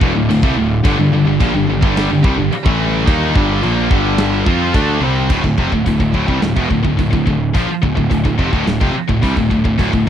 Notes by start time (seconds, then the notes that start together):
Already playing: D3 A3 D5 F5
0.00 E1 E2 B2, kick
0.15 D1 D2 A2
0.29 D1 D2 A2, china
0.43 C2 C3 G3, kick
0.57 D1 D2 A2
0.83 G1 G2 D3 G3 G4, kick, china
0.98 G1 G2 D3
1.12 G1 G2 D3
1.26 G1 G2 D3
1.40 A#1 A#2 F3, kick, china
1.55 G1 G2 D3
1.70 G1 G2 D3
1.82 G1 G2 D3 G3, kick
1.97 snare, china
2.11 G1 G2 D3
2.24 C2 C3 G3, kick
2.38 G1 G2 D3
2.52 muted picked electric bass stroke, muted distorted electric guitar stroke, china
2.65 A1 A2 E3 A3, kick
3.06 D#2 D#3 A#3 D#4 F4, kick, china
3.35 G1 G2 D3 G3, kick
3.63 A#1 A#2 F3 A#3, china
3.90 G1 G2 D3 G3, kick
4.18 snare, china
4.46 F2 F3 C4 F4, kick
4.74 D2 D3 A3 D4, kick, china
5.00 C2 C3 G3 C4
5.30 D1 D2 A2, kick, crash
5.44 D1 D2 A2, kick
5.57 F1 F2 C3, kick
5.72 D1 D2 A2, kick
5.86 D1 D2 A2, kick, open hi-hat
5.99 D1 D2 A2, kick
6.14 D1 D2 A2, kick
6.27 C2 C3 G3, kick
6.39 D1 D2 A2, snare, open hi-hat
6.56 E1 E2 B2, kick
6.69 D1 D2 A2, kick
6.83 D1 D2 A2, kick
6.97 D1 D2 A2, kick, open hi-hat
7.10 D1 D2 A2, kick
7.26 D1 D2 A2, kick
7.54 A#1 A#2 F3, kick, open hi-hat
7.66 muted picked electric bass stroke, muted distorted electric guitar stroke
7.82 D1 D2 A2, kick
7.95 D1 D2 A2, kick
8.10 D1 D2 A2, kick, open hi-hat
8.24 D1 D2 A2, kick
8.38 F1 F2 C3, kick
8.52 D1 D2 A2, kick
8.66 D1 D2 A2, snare, open hi-hat
8.80 F1 F2 C3, kick
8.93 muted picked electric bass stroke, muted distorted electric guitar stroke
9.08 D1 D2 A2, kick
9.22 C2 C3 G3, kick, open hi-hat
9.35 D1 D2 A2, kick
9.50 D1 D2 A2, kick
9.64 D1 D2 A2, kick
9.78 D1 D2 A2, kick, open hi-hat
9.92 D1 D2 A2, kick